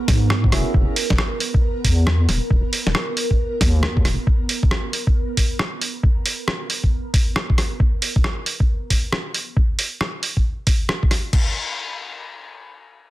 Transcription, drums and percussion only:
0.08 kick, snare, open hi-hat
0.30 cross-stick
0.44 kick
0.52 cross-stick, open hi-hat
0.74 kick
0.96 open hi-hat
1.10 kick, snare
1.18 cross-stick
1.40 open hi-hat
1.54 kick
1.84 kick, open hi-hat
2.07 cross-stick, snare
2.29 snare, open hi-hat
2.51 kick
2.73 open hi-hat
2.87 snare
2.95 cross-stick
3.17 open hi-hat
3.31 kick
3.61 kick, snare, open hi-hat
3.83 cross-stick
3.97 kick
4.05 cross-stick, open hi-hat
4.27 kick
4.49 open hi-hat
4.63 kick
4.71 cross-stick
4.93 open hi-hat
5.07 kick
5.37 kick, open hi-hat
5.59 cross-stick
5.81 open hi-hat
6.03 kick
6.26 open hi-hat
6.48 cross-stick
6.70 open hi-hat
6.84 kick
7.14 kick, open hi-hat
7.36 cross-stick
7.50 kick
7.58 cross-stick, open hi-hat
7.80 kick
8.02 open hi-hat
8.16 kick
8.24 cross-stick
8.46 open hi-hat
8.60 kick
8.90 kick, open hi-hat
9.12 cross-stick
9.34 open hi-hat
9.57 kick
9.79 open hi-hat
10.01 cross-stick
10.23 open hi-hat
10.37 kick
10.67 kick, open hi-hat
10.89 cross-stick
11.03 kick
11.11 cross-stick, open hi-hat
11.33 kick, crash

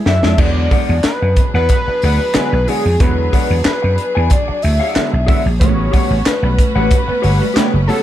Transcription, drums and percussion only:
0.06 snare
0.23 snare
0.38 kick, crash
0.71 kick, open hi-hat
1.04 snare, clap, closed hi-hat
1.36 kick, closed hi-hat
1.69 kick, closed hi-hat
2.02 open hi-hat
2.34 snare, clap, closed hi-hat
2.68 open hi-hat
3.00 kick, closed hi-hat
3.33 kick, open hi-hat
3.65 snare, clap, closed hi-hat
3.98 closed hi-hat
4.30 kick, closed hi-hat
4.62 open hi-hat
4.96 snare, clap, closed hi-hat
5.28 kick, open hi-hat
5.61 kick, closed hi-hat
5.93 kick, open hi-hat
6.26 snare, clap, closed hi-hat
6.59 kick, closed hi-hat
6.91 kick, closed hi-hat
7.24 open hi-hat
7.57 snare, clap, closed hi-hat
7.89 open hi-hat

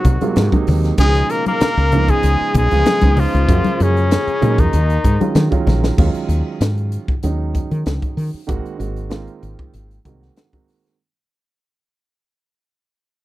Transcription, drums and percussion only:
0.05 kick, closed hi-hat, low conga
0.21 closed hi-hat, high conga
0.36 snare, closed hi-hat, high conga
0.52 kick, closed hi-hat, high conga
0.67 snare, open hi-hat, low conga
0.83 snare, closed hi-hat
0.98 kick, closed hi-hat
1.15 closed hi-hat
1.30 closed hi-hat
1.46 closed hi-hat, high conga
1.61 snare, closed hi-hat, low conga
1.78 closed hi-hat
1.92 closed hi-hat, low conga
2.08 kick, closed hi-hat
2.23 closed hi-hat
2.54 kick, closed hi-hat, low conga
2.71 closed hi-hat
2.86 snare, closed hi-hat, high conga
3.02 kick, closed hi-hat, high conga
3.17 open hi-hat, low conga
3.33 closed hi-hat
3.49 kick, closed hi-hat
3.65 closed hi-hat, high conga
3.80 closed hi-hat
3.97 closed hi-hat
4.11 snare, closed hi-hat
4.27 closed hi-hat
4.42 closed hi-hat, low conga
4.58 kick, closed hi-hat
4.73 closed hi-hat
4.90 closed hi-hat
5.04 kick, closed hi-hat
5.21 closed hi-hat, high conga
5.35 snare, closed hi-hat, high conga
5.52 kick, closed hi-hat
5.67 snare, low conga
5.84 snare
5.98 kick, crash
6.14 closed hi-hat
6.29 closed hi-hat
6.61 snare, closed hi-hat
6.78 closed hi-hat
6.92 closed hi-hat
7.08 kick
7.23 closed hi-hat
7.55 kick, closed hi-hat
7.71 closed hi-hat
7.86 snare, closed hi-hat
8.02 kick, closed hi-hat
8.18 open hi-hat
8.49 kick, closed hi-hat
8.66 closed hi-hat
8.80 closed hi-hat
8.96 closed hi-hat
9.11 snare, closed hi-hat
9.27 closed hi-hat
9.43 closed hi-hat
9.59 kick
9.74 closed hi-hat
9.91 closed hi-hat
10.05 kick, closed hi-hat
10.22 snare
10.37 snare, closed hi-hat
10.53 kick, closed hi-hat
10.68 snare, open hi-hat
10.85 snare

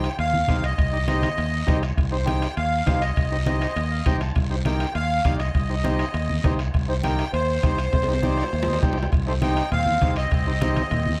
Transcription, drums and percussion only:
0.04 bombo rim, high timbale, short guiro
0.19 bombo rim, high conga, high timbale, long guiro
0.34 high conga
0.48 bombo low, bombo rim, high conga, high timbale, short guiro
0.64 bombo rim, high timbale, short guiro
0.78 bombo low, bombo rim, high conga, high timbale, long guiro
1.08 bombo rim, high conga, high timbale, short guiro
1.23 bombo rim, high conga, high timbale, short guiro
1.38 bombo rim, high conga, high timbale, long guiro
1.68 bombo low, bombo rim, high conga, high timbale, low timbale, short guiro
1.83 bombo rim, high timbale, short guiro
1.97 bombo low, bombo rim, high conga, high timbale, long guiro
2.27 bombo rim, high conga, high timbale, short guiro
2.42 bombo rim, high timbale, short guiro
2.57 bombo rim, high conga, high timbale, long guiro
2.87 bombo low, bombo rim, high conga, high timbale, low timbale, short guiro
3.02 bombo rim, high timbale, short guiro
3.16 bombo low, bombo rim, high conga, high timbale, long guiro
3.46 bombo rim, high conga, high timbale, short guiro
3.61 bombo rim, high timbale, short guiro
3.76 bombo rim, high conga, high timbale, long guiro
4.06 bombo low, bombo rim, high conga, high timbale, low timbale, short guiro
4.20 bombo rim, high timbale, short guiro
4.35 bombo low, bombo rim, high conga, high timbale, long guiro
4.65 bombo rim, high conga, high timbale, short guiro
4.80 bombo rim, high timbale, short guiro
4.95 bombo rim, high conga, high timbale, long guiro
5.25 bombo low, bombo rim, high conga, high timbale, short guiro
5.40 bombo rim, high timbale, short guiro
5.55 bombo low, bombo rim, high conga, high timbale, long guiro
5.84 bombo rim, high conga, high timbale, short guiro
5.99 bombo rim, high timbale, short guiro
6.14 bombo rim, high conga, high timbale, long guiro
6.29 high conga
6.44 bombo low, bombo rim, high conga, high timbale, low timbale, short guiro
6.59 bombo rim, high timbale, short guiro
6.74 bombo low, bombo rim, high conga, high timbale, long guiro
7.03 bombo rim, high conga, high timbale, short guiro
7.19 bombo rim, high timbale, short guiro
7.33 bombo rim, high conga, high timbale, long guiro
7.63 bombo low, bombo rim, high conga, high timbale, short guiro
7.78 bombo rim, high timbale, short guiro
7.93 bombo low, bombo rim, high conga, high timbale, long guiro
8.03 high timbale
8.13 high timbale
8.23 bombo rim, high conga, short guiro
8.38 bombo rim, short guiro
8.43 low timbale
8.53 bombo rim, high conga, long guiro
8.63 low timbale
8.68 high conga
8.73 low timbale
8.83 bombo low, bombo rim, high conga, low timbale, short guiro
8.93 low timbale
8.97 bombo rim, short guiro
9.03 low timbale
9.12 bombo low, bombo rim, high conga, low conga, high timbale, long guiro
9.42 bombo rim, high conga, high timbale, short guiro
9.57 bombo rim, high timbale, short guiro
9.72 bombo rim, high conga, low conga, high timbale, long guiro
9.86 high conga
10.01 bombo low, bombo rim, high conga, high timbale, short guiro
10.16 bombo rim, high timbale, short guiro
10.31 bombo low, bombo rim, high conga, low conga, high timbale, long guiro
10.61 bombo rim, high conga, high timbale, short guiro
10.76 bombo rim, high conga, high timbale, short guiro
10.91 bombo rim, high conga, low conga, high timbale, long guiro
11.06 high conga

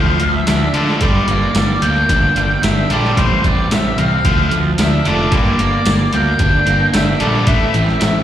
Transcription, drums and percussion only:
0.20 closed hi-hat
0.47 snare, closed hi-hat, tambourine
0.74 closed hi-hat
0.89 snare
1.01 kick, closed hi-hat
1.28 closed hi-hat
1.55 snare, closed hi-hat, tambourine
1.82 closed hi-hat
2.09 kick, closed hi-hat
2.36 closed hi-hat
2.63 snare, closed hi-hat, tambourine
2.90 closed hi-hat
3.05 snare
3.17 kick, closed hi-hat
3.44 kick, closed hi-hat
3.71 snare, closed hi-hat, tambourine
3.98 closed hi-hat
4.25 kick, closed hi-hat
4.51 closed hi-hat
4.78 snare, closed hi-hat, tambourine
5.05 closed hi-hat
5.32 kick, closed hi-hat
5.59 closed hi-hat
5.86 snare, closed hi-hat, tambourine
6.13 closed hi-hat
6.39 kick, closed hi-hat
6.67 closed hi-hat
6.94 snare, closed hi-hat, tambourine
7.20 closed hi-hat
7.47 kick, closed hi-hat
7.74 closed hi-hat
7.89 snare
8.01 snare, closed hi-hat, tambourine

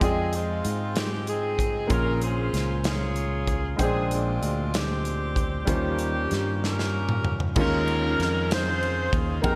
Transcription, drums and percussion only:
0.01 kick, closed hi-hat
0.33 closed hi-hat
0.65 closed hi-hat
0.96 snare, closed hi-hat
1.27 closed hi-hat
1.59 kick, closed hi-hat
1.90 kick, closed hi-hat
2.22 closed hi-hat
2.54 snare, closed hi-hat
2.84 snare, closed hi-hat
3.16 closed hi-hat
3.47 kick, closed hi-hat
3.79 kick, closed hi-hat
4.11 closed hi-hat
4.43 closed hi-hat
4.74 snare, closed hi-hat
5.05 closed hi-hat
5.36 kick, closed hi-hat
5.67 kick, closed hi-hat
5.99 closed hi-hat
6.31 snare, closed hi-hat
6.64 snare
6.79 snare
7.09 mid tom
7.25 floor tom
7.40 floor tom
7.56 kick, crash
7.88 ride
8.20 snare, ride
8.51 snare, ride
8.83 ride
9.13 kick, ride
9.44 kick, ride

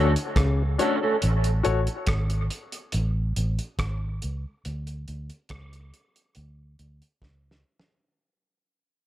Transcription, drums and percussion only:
0.16 closed hi-hat
0.36 kick, cross-stick, closed hi-hat
0.79 closed hi-hat
1.22 closed hi-hat
1.44 closed hi-hat
1.65 closed hi-hat
1.87 closed hi-hat
2.07 kick, cross-stick, closed hi-hat
2.30 closed hi-hat
2.50 closed hi-hat
2.72 closed hi-hat
2.92 closed hi-hat
3.36 closed hi-hat
3.59 closed hi-hat
3.79 kick, cross-stick, closed hi-hat
4.22 closed hi-hat
4.65 closed hi-hat
4.87 closed hi-hat
5.08 closed hi-hat
5.30 closed hi-hat
5.49 kick, cross-stick, closed hi-hat
5.73 closed hi-hat
5.94 closed hi-hat
6.16 closed hi-hat
6.35 closed hi-hat
6.79 closed hi-hat
7.02 closed hi-hat
7.22 kick, snare
7.51 snare
7.80 snare

